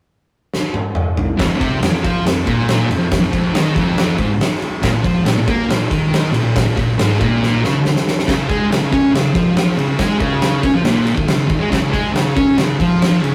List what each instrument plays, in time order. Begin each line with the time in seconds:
0.54 snare
0.74 high tom
0.95 mid tom
1.17 floor tom
1.38 distorted electric guitar F2, kick, snare, ride
1.48 distorted electric guitar F2
1.57 distorted electric guitar C3
1.61 kick, ride
1.80 distorted electric guitar F2, snare, ride
1.92 distorted electric guitar F2
2.03 distorted electric guitar F3, kick, ride
2.26 distorted electric guitar F2, snare, ride
2.46 distorted electric guitar A#2, kick, ride
2.69 snare, ride
2.88 distorted electric guitar F2, ride
2.98 distorted electric guitar F2
3.12 kick, snare, ride
3.20 distorted electric guitar F2
3.31 distorted electric guitar F2, kick, ride
3.54 distorted electric guitar D#3, snare, ride
3.75 distorted electric guitar F2, kick, ride
3.98 snare, ride
4.18 distorted electric guitar G#2, kick, ride
4.41 snare, ride
4.62 ride
4.82 distorted electric guitar A#2, kick, snare, ride
4.93 distorted electric guitar A#2
5.03 distorted electric guitar F3, kick, ride
5.25 distorted electric guitar A#2, snare, ride
5.38 distorted electric guitar A#2
5.48 distorted electric guitar A#3, kick, ride
5.69 distorted electric guitar A#2, snare, ride
5.88 distorted electric guitar D#3, kick, ride
6.14 snare, ride
6.32 distorted electric guitar A#2, ride
6.43 distorted electric guitar A#2
6.56 kick, snare, ride
6.65 distorted electric guitar A#2
6.76 distorted electric guitar A#2, kick, ride
6.98 distorted electric guitar G#2, snare, ride
7.19 distorted electric guitar A#2, kick, ride
7.43 snare
7.64 distorted electric guitar C#3, snare
7.85 snare
7.96 snare
8.07 snare
8.19 snare
8.27 distorted electric guitar C#3, kick, snare, ride, crash
8.37 distorted electric guitar C#3
8.49 distorted electric guitar G#3, kick, ride
8.70 distorted electric guitar C#3, snare, ride
8.81 distorted electric guitar C#3
8.92 distorted electric guitar C#4, kick, ride
9.12 distorted electric guitar C#3, snare, ride
9.34 distorted electric guitar F3, kick, ride
9.57 snare, ride
9.77 distorted electric guitar C#3, ride
9.88 distorted electric guitar C#3
9.98 distorted electric guitar G#3, kick, snare, ride
10.19 distorted electric guitar C#3, kick, ride
10.42 snare, ride
10.63 distorted electric guitar C#4, kick, ride
10.75 distorted electric guitar F3
10.85 distorted electric guitar A#2, snare, ride
11.07 ride
11.16 distorted electric guitar D#3, kick
11.28 distorted electric guitar C#3, snare, ride
11.48 distorted electric guitar D#3, kick, ride
11.60 distorted electric guitar G#3
11.70 distorted electric guitar C#3, kick, snare, ride
11.81 distorted electric guitar C#3
11.89 distorted electric guitar G#3
11.94 kick, ride
12.13 distorted electric guitar C#3, snare, ride
12.23 distorted electric guitar C#3
12.35 distorted electric guitar C#4, kick, ride
12.57 distorted electric guitar C#3, snare, ride
12.80 distorted electric guitar F3, kick, ride
13.02 snare, ride
13.22 distorted electric guitar C#3, ride